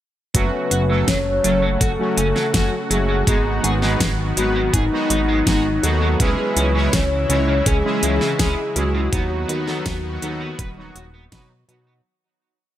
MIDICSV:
0, 0, Header, 1, 7, 480
1, 0, Start_track
1, 0, Tempo, 731707
1, 227, Time_signature, 4, 2, 24, 8
1, 8380, End_track
2, 0, Start_track
2, 0, Title_t, "Soft synth lead"
2, 0, Program_c, 0, 80
2, 227, Note_on_c, 0, 71, 115
2, 707, Note_on_c, 0, 73, 112
2, 717, Note_off_c, 0, 71, 0
2, 1183, Note_off_c, 0, 73, 0
2, 1187, Note_on_c, 0, 69, 114
2, 1908, Note_on_c, 0, 68, 90
2, 1918, Note_off_c, 0, 69, 0
2, 2628, Note_off_c, 0, 68, 0
2, 2866, Note_on_c, 0, 66, 92
2, 3107, Note_on_c, 0, 63, 111
2, 3117, Note_off_c, 0, 66, 0
2, 3825, Note_on_c, 0, 69, 98
2, 3835, Note_off_c, 0, 63, 0
2, 4065, Note_on_c, 0, 71, 121
2, 4075, Note_off_c, 0, 69, 0
2, 4544, Note_on_c, 0, 73, 105
2, 4554, Note_off_c, 0, 71, 0
2, 5025, Note_on_c, 0, 68, 113
2, 5035, Note_off_c, 0, 73, 0
2, 5260, Note_off_c, 0, 68, 0
2, 5264, Note_on_c, 0, 68, 113
2, 5745, Note_on_c, 0, 66, 106
2, 5755, Note_off_c, 0, 68, 0
2, 7426, Note_off_c, 0, 66, 0
2, 8380, End_track
3, 0, Start_track
3, 0, Title_t, "Analog polysynth"
3, 0, Program_c, 1, 90
3, 227, Note_on_c, 1, 66, 105
3, 228, Note_on_c, 1, 54, 93
3, 228, Note_on_c, 1, 57, 84
3, 228, Note_on_c, 1, 61, 85
3, 559, Note_off_c, 1, 54, 0
3, 559, Note_off_c, 1, 57, 0
3, 559, Note_off_c, 1, 61, 0
3, 559, Note_off_c, 1, 66, 0
3, 587, Note_on_c, 1, 54, 95
3, 587, Note_on_c, 1, 57, 84
3, 587, Note_on_c, 1, 61, 83
3, 587, Note_on_c, 1, 69, 104
3, 716, Note_off_c, 1, 54, 0
3, 716, Note_off_c, 1, 57, 0
3, 716, Note_off_c, 1, 69, 0
3, 717, Note_off_c, 1, 61, 0
3, 946, Note_on_c, 1, 54, 88
3, 946, Note_on_c, 1, 57, 81
3, 947, Note_on_c, 1, 61, 83
3, 947, Note_on_c, 1, 69, 99
3, 1076, Note_off_c, 1, 54, 0
3, 1076, Note_off_c, 1, 57, 0
3, 1076, Note_off_c, 1, 61, 0
3, 1076, Note_off_c, 1, 69, 0
3, 1308, Note_on_c, 1, 54, 96
3, 1308, Note_on_c, 1, 57, 86
3, 1308, Note_on_c, 1, 61, 87
3, 1308, Note_on_c, 1, 66, 105
3, 1437, Note_off_c, 1, 54, 0
3, 1437, Note_off_c, 1, 57, 0
3, 1437, Note_off_c, 1, 61, 0
3, 1437, Note_off_c, 1, 66, 0
3, 1667, Note_on_c, 1, 54, 92
3, 1667, Note_on_c, 1, 57, 83
3, 1667, Note_on_c, 1, 61, 82
3, 1667, Note_on_c, 1, 66, 102
3, 1797, Note_off_c, 1, 54, 0
3, 1797, Note_off_c, 1, 57, 0
3, 1797, Note_off_c, 1, 61, 0
3, 1797, Note_off_c, 1, 66, 0
3, 1908, Note_on_c, 1, 54, 88
3, 1908, Note_on_c, 1, 57, 84
3, 1908, Note_on_c, 1, 61, 81
3, 1908, Note_on_c, 1, 66, 93
3, 2119, Note_off_c, 1, 54, 0
3, 2119, Note_off_c, 1, 57, 0
3, 2119, Note_off_c, 1, 61, 0
3, 2119, Note_off_c, 1, 66, 0
3, 2147, Note_on_c, 1, 56, 94
3, 2147, Note_on_c, 1, 59, 86
3, 2147, Note_on_c, 1, 63, 92
3, 2147, Note_on_c, 1, 66, 106
3, 2478, Note_off_c, 1, 56, 0
3, 2478, Note_off_c, 1, 59, 0
3, 2478, Note_off_c, 1, 63, 0
3, 2478, Note_off_c, 1, 66, 0
3, 2507, Note_on_c, 1, 56, 97
3, 2507, Note_on_c, 1, 59, 85
3, 2508, Note_on_c, 1, 63, 84
3, 2508, Note_on_c, 1, 71, 101
3, 2637, Note_off_c, 1, 56, 0
3, 2637, Note_off_c, 1, 59, 0
3, 2637, Note_off_c, 1, 63, 0
3, 2637, Note_off_c, 1, 71, 0
3, 2868, Note_on_c, 1, 71, 98
3, 2869, Note_on_c, 1, 56, 88
3, 2869, Note_on_c, 1, 59, 82
3, 2869, Note_on_c, 1, 63, 79
3, 2997, Note_off_c, 1, 59, 0
3, 2997, Note_off_c, 1, 63, 0
3, 2997, Note_off_c, 1, 71, 0
3, 2998, Note_off_c, 1, 56, 0
3, 3229, Note_on_c, 1, 56, 96
3, 3229, Note_on_c, 1, 59, 89
3, 3229, Note_on_c, 1, 63, 87
3, 3229, Note_on_c, 1, 66, 107
3, 3357, Note_off_c, 1, 59, 0
3, 3357, Note_off_c, 1, 63, 0
3, 3358, Note_off_c, 1, 56, 0
3, 3358, Note_off_c, 1, 66, 0
3, 3588, Note_on_c, 1, 56, 92
3, 3588, Note_on_c, 1, 59, 85
3, 3588, Note_on_c, 1, 66, 104
3, 3589, Note_on_c, 1, 63, 86
3, 3717, Note_off_c, 1, 56, 0
3, 3717, Note_off_c, 1, 59, 0
3, 3717, Note_off_c, 1, 63, 0
3, 3717, Note_off_c, 1, 66, 0
3, 3828, Note_on_c, 1, 54, 86
3, 3828, Note_on_c, 1, 59, 80
3, 3828, Note_on_c, 1, 63, 80
3, 3828, Note_on_c, 1, 66, 97
3, 4039, Note_off_c, 1, 54, 0
3, 4039, Note_off_c, 1, 59, 0
3, 4039, Note_off_c, 1, 63, 0
3, 4039, Note_off_c, 1, 66, 0
3, 4067, Note_on_c, 1, 56, 100
3, 4067, Note_on_c, 1, 61, 92
3, 4067, Note_on_c, 1, 64, 85
3, 4067, Note_on_c, 1, 68, 102
3, 4398, Note_off_c, 1, 56, 0
3, 4398, Note_off_c, 1, 61, 0
3, 4398, Note_off_c, 1, 64, 0
3, 4398, Note_off_c, 1, 68, 0
3, 4426, Note_on_c, 1, 64, 90
3, 4427, Note_on_c, 1, 56, 94
3, 4427, Note_on_c, 1, 61, 88
3, 4427, Note_on_c, 1, 73, 105
3, 4556, Note_off_c, 1, 56, 0
3, 4556, Note_off_c, 1, 64, 0
3, 4557, Note_off_c, 1, 61, 0
3, 4557, Note_off_c, 1, 73, 0
3, 4787, Note_on_c, 1, 56, 91
3, 4787, Note_on_c, 1, 61, 83
3, 4787, Note_on_c, 1, 73, 101
3, 4788, Note_on_c, 1, 64, 83
3, 4917, Note_off_c, 1, 56, 0
3, 4917, Note_off_c, 1, 61, 0
3, 4917, Note_off_c, 1, 64, 0
3, 4917, Note_off_c, 1, 73, 0
3, 5146, Note_on_c, 1, 61, 88
3, 5147, Note_on_c, 1, 56, 97
3, 5147, Note_on_c, 1, 64, 88
3, 5147, Note_on_c, 1, 68, 104
3, 5276, Note_off_c, 1, 56, 0
3, 5276, Note_off_c, 1, 61, 0
3, 5276, Note_off_c, 1, 64, 0
3, 5276, Note_off_c, 1, 68, 0
3, 5507, Note_on_c, 1, 56, 93
3, 5507, Note_on_c, 1, 61, 84
3, 5507, Note_on_c, 1, 64, 85
3, 5507, Note_on_c, 1, 68, 106
3, 5637, Note_off_c, 1, 56, 0
3, 5637, Note_off_c, 1, 61, 0
3, 5637, Note_off_c, 1, 64, 0
3, 5637, Note_off_c, 1, 68, 0
3, 5747, Note_on_c, 1, 56, 85
3, 5747, Note_on_c, 1, 61, 82
3, 5747, Note_on_c, 1, 64, 82
3, 5747, Note_on_c, 1, 68, 98
3, 5958, Note_off_c, 1, 61, 0
3, 5958, Note_off_c, 1, 64, 0
3, 5959, Note_off_c, 1, 56, 0
3, 5959, Note_off_c, 1, 68, 0
3, 5987, Note_on_c, 1, 54, 99
3, 5987, Note_on_c, 1, 59, 89
3, 5987, Note_on_c, 1, 63, 88
3, 5987, Note_on_c, 1, 66, 102
3, 6318, Note_off_c, 1, 54, 0
3, 6318, Note_off_c, 1, 59, 0
3, 6318, Note_off_c, 1, 63, 0
3, 6318, Note_off_c, 1, 66, 0
3, 6346, Note_on_c, 1, 63, 87
3, 6346, Note_on_c, 1, 69, 103
3, 6347, Note_on_c, 1, 54, 97
3, 6347, Note_on_c, 1, 59, 86
3, 6476, Note_off_c, 1, 54, 0
3, 6476, Note_off_c, 1, 63, 0
3, 6476, Note_off_c, 1, 69, 0
3, 6477, Note_off_c, 1, 59, 0
3, 6708, Note_on_c, 1, 54, 89
3, 6708, Note_on_c, 1, 59, 85
3, 6708, Note_on_c, 1, 63, 85
3, 6708, Note_on_c, 1, 69, 99
3, 6837, Note_off_c, 1, 54, 0
3, 6837, Note_off_c, 1, 59, 0
3, 6837, Note_off_c, 1, 63, 0
3, 6837, Note_off_c, 1, 69, 0
3, 7067, Note_on_c, 1, 54, 103
3, 7067, Note_on_c, 1, 59, 90
3, 7067, Note_on_c, 1, 63, 87
3, 7067, Note_on_c, 1, 66, 105
3, 7196, Note_off_c, 1, 63, 0
3, 7197, Note_off_c, 1, 54, 0
3, 7197, Note_off_c, 1, 59, 0
3, 7197, Note_off_c, 1, 66, 0
3, 7427, Note_on_c, 1, 54, 94
3, 7427, Note_on_c, 1, 59, 84
3, 7427, Note_on_c, 1, 63, 85
3, 7427, Note_on_c, 1, 66, 105
3, 7557, Note_off_c, 1, 54, 0
3, 7557, Note_off_c, 1, 59, 0
3, 7557, Note_off_c, 1, 63, 0
3, 7557, Note_off_c, 1, 66, 0
3, 7667, Note_on_c, 1, 54, 87
3, 7667, Note_on_c, 1, 59, 77
3, 7667, Note_on_c, 1, 63, 82
3, 7667, Note_on_c, 1, 66, 96
3, 7878, Note_off_c, 1, 54, 0
3, 7878, Note_off_c, 1, 59, 0
3, 7878, Note_off_c, 1, 66, 0
3, 7879, Note_off_c, 1, 63, 0
3, 8380, End_track
4, 0, Start_track
4, 0, Title_t, "Overdriven electric guitar"
4, 0, Program_c, 2, 29
4, 228, Note_on_c, 2, 54, 76
4, 288, Note_off_c, 2, 54, 0
4, 468, Note_on_c, 2, 66, 78
4, 528, Note_off_c, 2, 66, 0
4, 589, Note_on_c, 2, 54, 67
4, 648, Note_off_c, 2, 54, 0
4, 707, Note_on_c, 2, 54, 81
4, 767, Note_off_c, 2, 54, 0
4, 947, Note_on_c, 2, 54, 72
4, 983, Note_off_c, 2, 54, 0
4, 1066, Note_on_c, 2, 54, 75
4, 1103, Note_off_c, 2, 54, 0
4, 1186, Note_on_c, 2, 66, 73
4, 1246, Note_off_c, 2, 66, 0
4, 1426, Note_on_c, 2, 61, 68
4, 1487, Note_off_c, 2, 61, 0
4, 1547, Note_on_c, 2, 54, 73
4, 1607, Note_off_c, 2, 54, 0
4, 1667, Note_on_c, 2, 66, 77
4, 1757, Note_off_c, 2, 66, 0
4, 1907, Note_on_c, 2, 54, 69
4, 1943, Note_off_c, 2, 54, 0
4, 2026, Note_on_c, 2, 54, 76
4, 2063, Note_off_c, 2, 54, 0
4, 2147, Note_on_c, 2, 56, 80
4, 2207, Note_off_c, 2, 56, 0
4, 2387, Note_on_c, 2, 68, 75
4, 2447, Note_off_c, 2, 68, 0
4, 2507, Note_on_c, 2, 56, 73
4, 2567, Note_off_c, 2, 56, 0
4, 2627, Note_on_c, 2, 56, 82
4, 2687, Note_off_c, 2, 56, 0
4, 2867, Note_on_c, 2, 56, 74
4, 2903, Note_off_c, 2, 56, 0
4, 2987, Note_on_c, 2, 56, 71
4, 3023, Note_off_c, 2, 56, 0
4, 3105, Note_on_c, 2, 68, 78
4, 3166, Note_off_c, 2, 68, 0
4, 3348, Note_on_c, 2, 63, 69
4, 3407, Note_off_c, 2, 63, 0
4, 3467, Note_on_c, 2, 56, 74
4, 3527, Note_off_c, 2, 56, 0
4, 3588, Note_on_c, 2, 68, 80
4, 3678, Note_off_c, 2, 68, 0
4, 3828, Note_on_c, 2, 56, 74
4, 3864, Note_off_c, 2, 56, 0
4, 3947, Note_on_c, 2, 56, 77
4, 3983, Note_off_c, 2, 56, 0
4, 4068, Note_on_c, 2, 49, 80
4, 4128, Note_off_c, 2, 49, 0
4, 4309, Note_on_c, 2, 61, 72
4, 4368, Note_off_c, 2, 61, 0
4, 4428, Note_on_c, 2, 49, 70
4, 4488, Note_off_c, 2, 49, 0
4, 4548, Note_on_c, 2, 49, 76
4, 4608, Note_off_c, 2, 49, 0
4, 4788, Note_on_c, 2, 49, 75
4, 4824, Note_off_c, 2, 49, 0
4, 4907, Note_on_c, 2, 49, 75
4, 4943, Note_off_c, 2, 49, 0
4, 5026, Note_on_c, 2, 61, 76
4, 5087, Note_off_c, 2, 61, 0
4, 5267, Note_on_c, 2, 56, 78
4, 5327, Note_off_c, 2, 56, 0
4, 5386, Note_on_c, 2, 49, 75
4, 5447, Note_off_c, 2, 49, 0
4, 5507, Note_on_c, 2, 61, 79
4, 5597, Note_off_c, 2, 61, 0
4, 5746, Note_on_c, 2, 49, 74
4, 5783, Note_off_c, 2, 49, 0
4, 5867, Note_on_c, 2, 49, 73
4, 5903, Note_off_c, 2, 49, 0
4, 5987, Note_on_c, 2, 59, 80
4, 6047, Note_off_c, 2, 59, 0
4, 6228, Note_on_c, 2, 71, 79
4, 6288, Note_off_c, 2, 71, 0
4, 6349, Note_on_c, 2, 59, 74
4, 6408, Note_off_c, 2, 59, 0
4, 6468, Note_on_c, 2, 59, 78
4, 6528, Note_off_c, 2, 59, 0
4, 6708, Note_on_c, 2, 59, 75
4, 6744, Note_off_c, 2, 59, 0
4, 6828, Note_on_c, 2, 59, 77
4, 6864, Note_off_c, 2, 59, 0
4, 6947, Note_on_c, 2, 71, 81
4, 7007, Note_off_c, 2, 71, 0
4, 7189, Note_on_c, 2, 66, 71
4, 7248, Note_off_c, 2, 66, 0
4, 7308, Note_on_c, 2, 59, 77
4, 7368, Note_off_c, 2, 59, 0
4, 7427, Note_on_c, 2, 71, 80
4, 7517, Note_off_c, 2, 71, 0
4, 7668, Note_on_c, 2, 59, 78
4, 7704, Note_off_c, 2, 59, 0
4, 7787, Note_on_c, 2, 59, 80
4, 7823, Note_off_c, 2, 59, 0
4, 8380, End_track
5, 0, Start_track
5, 0, Title_t, "Analog synth pad"
5, 0, Program_c, 3, 89
5, 227, Note_on_c, 3, 49, 86
5, 227, Note_on_c, 3, 66, 94
5, 228, Note_on_c, 3, 54, 79
5, 228, Note_on_c, 3, 57, 78
5, 2128, Note_off_c, 3, 49, 0
5, 2128, Note_off_c, 3, 54, 0
5, 2128, Note_off_c, 3, 57, 0
5, 2145, Note_on_c, 3, 51, 89
5, 2146, Note_on_c, 3, 54, 80
5, 2146, Note_on_c, 3, 59, 76
5, 4041, Note_off_c, 3, 66, 0
5, 4047, Note_off_c, 3, 51, 0
5, 4047, Note_off_c, 3, 59, 0
5, 4065, Note_on_c, 3, 52, 82
5, 4065, Note_on_c, 3, 64, 93
5, 4066, Note_on_c, 3, 49, 88
5, 5960, Note_off_c, 3, 54, 0
5, 5967, Note_off_c, 3, 52, 0
5, 5967, Note_off_c, 3, 64, 0
5, 5968, Note_off_c, 3, 49, 0
5, 5986, Note_on_c, 3, 51, 90
5, 5986, Note_on_c, 3, 54, 77
5, 5986, Note_on_c, 3, 59, 80
5, 5987, Note_on_c, 3, 66, 96
5, 7887, Note_off_c, 3, 51, 0
5, 7887, Note_off_c, 3, 59, 0
5, 7888, Note_off_c, 3, 54, 0
5, 7888, Note_off_c, 3, 66, 0
5, 8380, End_track
6, 0, Start_track
6, 0, Title_t, "Analog synth bass"
6, 0, Program_c, 4, 38
6, 227, Note_on_c, 4, 30, 101
6, 334, Note_off_c, 4, 30, 0
6, 467, Note_on_c, 4, 30, 83
6, 681, Note_off_c, 4, 30, 0
6, 707, Note_on_c, 4, 30, 95
6, 921, Note_off_c, 4, 30, 0
6, 948, Note_on_c, 4, 30, 94
6, 1161, Note_off_c, 4, 30, 0
6, 1186, Note_on_c, 4, 30, 97
6, 1294, Note_off_c, 4, 30, 0
6, 1426, Note_on_c, 4, 30, 81
6, 1534, Note_off_c, 4, 30, 0
6, 1666, Note_on_c, 4, 30, 98
6, 1774, Note_off_c, 4, 30, 0
6, 1907, Note_on_c, 4, 30, 101
6, 2121, Note_off_c, 4, 30, 0
6, 2147, Note_on_c, 4, 32, 86
6, 2361, Note_off_c, 4, 32, 0
6, 2386, Note_on_c, 4, 32, 87
6, 2600, Note_off_c, 4, 32, 0
6, 2626, Note_on_c, 4, 32, 94
6, 2840, Note_off_c, 4, 32, 0
6, 2867, Note_on_c, 4, 32, 82
6, 3081, Note_off_c, 4, 32, 0
6, 3107, Note_on_c, 4, 32, 89
6, 3214, Note_off_c, 4, 32, 0
6, 3346, Note_on_c, 4, 32, 76
6, 3560, Note_off_c, 4, 32, 0
6, 3586, Note_on_c, 4, 32, 93
6, 3801, Note_off_c, 4, 32, 0
6, 3826, Note_on_c, 4, 39, 88
6, 4041, Note_off_c, 4, 39, 0
6, 4067, Note_on_c, 4, 37, 98
6, 4174, Note_off_c, 4, 37, 0
6, 4306, Note_on_c, 4, 37, 85
6, 4520, Note_off_c, 4, 37, 0
6, 4546, Note_on_c, 4, 37, 97
6, 4760, Note_off_c, 4, 37, 0
6, 4785, Note_on_c, 4, 37, 104
6, 5000, Note_off_c, 4, 37, 0
6, 5027, Note_on_c, 4, 37, 103
6, 5134, Note_off_c, 4, 37, 0
6, 5266, Note_on_c, 4, 37, 84
6, 5374, Note_off_c, 4, 37, 0
6, 5507, Note_on_c, 4, 37, 97
6, 5614, Note_off_c, 4, 37, 0
6, 5746, Note_on_c, 4, 37, 96
6, 5961, Note_off_c, 4, 37, 0
6, 5986, Note_on_c, 4, 39, 85
6, 6200, Note_off_c, 4, 39, 0
6, 6226, Note_on_c, 4, 39, 96
6, 6440, Note_off_c, 4, 39, 0
6, 6466, Note_on_c, 4, 39, 105
6, 6680, Note_off_c, 4, 39, 0
6, 6706, Note_on_c, 4, 39, 83
6, 6920, Note_off_c, 4, 39, 0
6, 6946, Note_on_c, 4, 27, 104
6, 7160, Note_off_c, 4, 27, 0
6, 7186, Note_on_c, 4, 27, 95
6, 7400, Note_off_c, 4, 27, 0
6, 7426, Note_on_c, 4, 47, 89
6, 7640, Note_off_c, 4, 47, 0
6, 7665, Note_on_c, 4, 47, 108
6, 7880, Note_off_c, 4, 47, 0
6, 8380, End_track
7, 0, Start_track
7, 0, Title_t, "Drums"
7, 227, Note_on_c, 9, 36, 110
7, 227, Note_on_c, 9, 42, 95
7, 292, Note_off_c, 9, 42, 0
7, 293, Note_off_c, 9, 36, 0
7, 468, Note_on_c, 9, 42, 66
7, 533, Note_off_c, 9, 42, 0
7, 707, Note_on_c, 9, 36, 112
7, 707, Note_on_c, 9, 38, 118
7, 707, Note_on_c, 9, 42, 98
7, 772, Note_off_c, 9, 36, 0
7, 773, Note_off_c, 9, 38, 0
7, 773, Note_off_c, 9, 42, 0
7, 947, Note_on_c, 9, 42, 67
7, 1012, Note_off_c, 9, 42, 0
7, 1187, Note_on_c, 9, 36, 111
7, 1187, Note_on_c, 9, 42, 93
7, 1252, Note_off_c, 9, 36, 0
7, 1253, Note_off_c, 9, 42, 0
7, 1427, Note_on_c, 9, 42, 67
7, 1493, Note_off_c, 9, 42, 0
7, 1548, Note_on_c, 9, 38, 36
7, 1613, Note_off_c, 9, 38, 0
7, 1667, Note_on_c, 9, 36, 124
7, 1667, Note_on_c, 9, 38, 111
7, 1667, Note_on_c, 9, 42, 87
7, 1732, Note_off_c, 9, 36, 0
7, 1732, Note_off_c, 9, 38, 0
7, 1732, Note_off_c, 9, 42, 0
7, 1908, Note_on_c, 9, 42, 68
7, 1973, Note_off_c, 9, 42, 0
7, 2146, Note_on_c, 9, 36, 115
7, 2148, Note_on_c, 9, 42, 94
7, 2212, Note_off_c, 9, 36, 0
7, 2214, Note_off_c, 9, 42, 0
7, 2388, Note_on_c, 9, 42, 64
7, 2454, Note_off_c, 9, 42, 0
7, 2508, Note_on_c, 9, 38, 37
7, 2574, Note_off_c, 9, 38, 0
7, 2627, Note_on_c, 9, 36, 125
7, 2627, Note_on_c, 9, 38, 126
7, 2627, Note_on_c, 9, 42, 100
7, 2692, Note_off_c, 9, 36, 0
7, 2693, Note_off_c, 9, 38, 0
7, 2693, Note_off_c, 9, 42, 0
7, 2867, Note_on_c, 9, 42, 70
7, 2933, Note_off_c, 9, 42, 0
7, 3107, Note_on_c, 9, 36, 119
7, 3107, Note_on_c, 9, 42, 90
7, 3172, Note_off_c, 9, 36, 0
7, 3173, Note_off_c, 9, 42, 0
7, 3347, Note_on_c, 9, 42, 70
7, 3413, Note_off_c, 9, 42, 0
7, 3587, Note_on_c, 9, 36, 123
7, 3587, Note_on_c, 9, 38, 118
7, 3587, Note_on_c, 9, 42, 92
7, 3652, Note_off_c, 9, 36, 0
7, 3653, Note_off_c, 9, 38, 0
7, 3653, Note_off_c, 9, 42, 0
7, 3828, Note_on_c, 9, 42, 65
7, 3894, Note_off_c, 9, 42, 0
7, 4067, Note_on_c, 9, 36, 119
7, 4067, Note_on_c, 9, 42, 96
7, 4132, Note_off_c, 9, 36, 0
7, 4133, Note_off_c, 9, 42, 0
7, 4307, Note_on_c, 9, 42, 68
7, 4373, Note_off_c, 9, 42, 0
7, 4547, Note_on_c, 9, 36, 126
7, 4547, Note_on_c, 9, 38, 123
7, 4547, Note_on_c, 9, 42, 93
7, 4612, Note_off_c, 9, 36, 0
7, 4612, Note_off_c, 9, 38, 0
7, 4612, Note_off_c, 9, 42, 0
7, 4787, Note_on_c, 9, 42, 67
7, 4853, Note_off_c, 9, 42, 0
7, 5026, Note_on_c, 9, 42, 87
7, 5027, Note_on_c, 9, 36, 122
7, 5092, Note_off_c, 9, 36, 0
7, 5092, Note_off_c, 9, 42, 0
7, 5266, Note_on_c, 9, 42, 66
7, 5332, Note_off_c, 9, 42, 0
7, 5387, Note_on_c, 9, 38, 37
7, 5452, Note_off_c, 9, 38, 0
7, 5506, Note_on_c, 9, 38, 120
7, 5506, Note_on_c, 9, 42, 90
7, 5507, Note_on_c, 9, 36, 122
7, 5572, Note_off_c, 9, 36, 0
7, 5572, Note_off_c, 9, 38, 0
7, 5572, Note_off_c, 9, 42, 0
7, 5747, Note_on_c, 9, 42, 67
7, 5812, Note_off_c, 9, 42, 0
7, 5987, Note_on_c, 9, 36, 119
7, 5987, Note_on_c, 9, 42, 95
7, 6052, Note_off_c, 9, 36, 0
7, 6053, Note_off_c, 9, 42, 0
7, 6227, Note_on_c, 9, 42, 62
7, 6293, Note_off_c, 9, 42, 0
7, 6347, Note_on_c, 9, 38, 37
7, 6413, Note_off_c, 9, 38, 0
7, 6466, Note_on_c, 9, 36, 126
7, 6466, Note_on_c, 9, 38, 117
7, 6466, Note_on_c, 9, 42, 91
7, 6532, Note_off_c, 9, 36, 0
7, 6532, Note_off_c, 9, 38, 0
7, 6532, Note_off_c, 9, 42, 0
7, 6707, Note_on_c, 9, 42, 70
7, 6773, Note_off_c, 9, 42, 0
7, 6946, Note_on_c, 9, 36, 114
7, 6946, Note_on_c, 9, 42, 89
7, 7012, Note_off_c, 9, 36, 0
7, 7012, Note_off_c, 9, 42, 0
7, 7187, Note_on_c, 9, 42, 65
7, 7253, Note_off_c, 9, 42, 0
7, 7426, Note_on_c, 9, 36, 127
7, 7427, Note_on_c, 9, 38, 116
7, 7427, Note_on_c, 9, 42, 87
7, 7492, Note_off_c, 9, 36, 0
7, 7492, Note_off_c, 9, 38, 0
7, 7492, Note_off_c, 9, 42, 0
7, 7667, Note_on_c, 9, 42, 62
7, 7733, Note_off_c, 9, 42, 0
7, 8380, End_track
0, 0, End_of_file